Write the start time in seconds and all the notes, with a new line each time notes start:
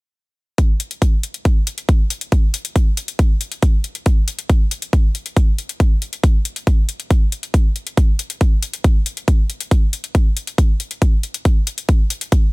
0.58 kick, closed hi-hat
0.80 closed hi-hat
0.91 closed hi-hat
1.02 kick, closed hi-hat
1.23 closed hi-hat
1.34 closed hi-hat
1.45 kick, closed hi-hat
1.67 closed hi-hat
1.78 closed hi-hat
1.89 kick, closed hi-hat
2.10 closed hi-hat
2.21 closed hi-hat
2.32 kick, closed hi-hat
2.54 closed hi-hat
2.65 closed hi-hat
2.76 kick, closed hi-hat
2.97 closed hi-hat
3.08 closed hi-hat
3.19 kick, closed hi-hat
3.41 closed hi-hat
3.52 closed hi-hat
3.62 kick, closed hi-hat
3.84 closed hi-hat
3.95 closed hi-hat
4.06 kick, closed hi-hat
4.28 closed hi-hat
4.39 closed hi-hat
4.50 kick, closed hi-hat
4.71 closed hi-hat
4.82 closed hi-hat
4.93 kick, closed hi-hat
5.15 closed hi-hat
5.26 closed hi-hat
5.37 kick, closed hi-hat
5.58 closed hi-hat
5.69 closed hi-hat
5.80 kick, closed hi-hat
6.02 closed hi-hat
6.13 closed hi-hat
6.24 kick, closed hi-hat
6.45 closed hi-hat
6.56 closed hi-hat
6.67 kick, closed hi-hat
6.89 closed hi-hat
7.00 closed hi-hat
7.11 kick, closed hi-hat
7.32 closed hi-hat
7.43 closed hi-hat
7.54 kick, closed hi-hat
7.76 closed hi-hat
7.87 closed hi-hat
7.97 kick, closed hi-hat
8.19 closed hi-hat
8.30 closed hi-hat
8.41 kick, closed hi-hat
8.63 closed hi-hat
8.73 closed hi-hat
8.84 kick, closed hi-hat
9.06 closed hi-hat
9.17 closed hi-hat
9.28 kick, closed hi-hat
9.50 closed hi-hat
9.60 closed hi-hat
9.71 kick, closed hi-hat
9.93 closed hi-hat
10.04 closed hi-hat
10.15 kick, closed hi-hat
10.37 closed hi-hat
10.47 closed hi-hat
10.58 kick, closed hi-hat
10.80 closed hi-hat
10.91 closed hi-hat
11.02 kick, closed hi-hat
11.23 closed hi-hat
11.34 closed hi-hat
11.45 kick, closed hi-hat
11.67 closed hi-hat
11.78 closed hi-hat
11.89 kick, closed hi-hat
12.10 closed hi-hat
12.21 closed hi-hat
12.32 kick, closed hi-hat